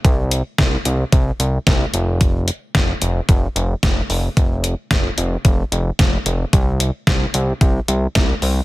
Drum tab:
HH |xxxxxxxx|xxxxxxxo|xxxxxxxx|xxxxxxxo|
SD |--o---o-|--o---o-|--o---o-|--o---o-|
BD |o-o-o-o-|o-o-o-o-|o-o-o-o-|o-o-o-o-|